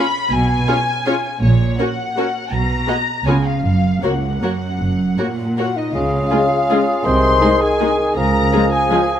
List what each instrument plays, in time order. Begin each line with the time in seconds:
Already playing: violin section B5
0.31 double bass section B1, cello section B2, violin section G#5
0.68 viola section C#4 F4, violin section G#4 C#5
1.06 viola section C#4 F4, violin section G#4 C#5
1.41 double bass section A#1, cello section A#2, violin section C#5
1.79 viola section C#4 F#4, violin section A#4 C#5 F#5
2.17 viola section C#4 F#4, violin section A#4 C#5
2.52 double bass section B1, cello section B2, violin section A#5
2.88 viola section B3 F#4, violin section G#4 D#5
3.26 double bass section C#2, cello section C#3, viola section B3 F4, violin section G#4 C#5 G#5
3.45 violin section F5
3.64 double bass section F#1, cello section F#2, violin section F5
4.03 cello section C#2, viola section A#3 F#4, violin section A#4 C#5 F#5
4.42 cello section F#2, viola section A#3 F#4, violin section A#4 C#5
4.80 double bass section F#1
5.18 cello section A#2, viola section A#3 F#4, violin section A#4 C#5
5.57 viola section A#3 F#4, clarinet F#4, violin section A#4 C#5 F#5, flute F#5
5.75 clarinet D#4, flute D#5, violin section D#5
5.94 double bass section C#2, bassoon C#3, cello section C#3, clarinet F4, cor anglais G#4, flute F5, violin section F5
6.31 french horn section G#3 C#4, viola section G#3 F4, violin section F4 G#4
6.69 viola section G#3 F4, french horn section G#3 C#4, violin section F4 G#4
7.04 double bass section C2, cello section C3, bassoon D#3, clarinet C5, flute C6, violin section C6
7.41 french horn section G#3 D#4, viola section G#3, violin section D#4 G#4
7.61 clarinet G#4, flute G#5, violin section G#5
7.80 french horn section G#3 D#4, viola section G#3, violin section D#4 G#4
8.16 double bass section C#2, cello section C#3, bassoon F3, cor anglais G#4, clarinet A#4, violin section A#5, flute A#5
8.53 viola section F3 G#3, french horn section G#3 F4, violin section C#4 G#4
8.72 clarinet G#4, violin section G#5, flute G#5
8.90 viola section F3 G#3, french horn section G#3 F4, violin section C#4 G#4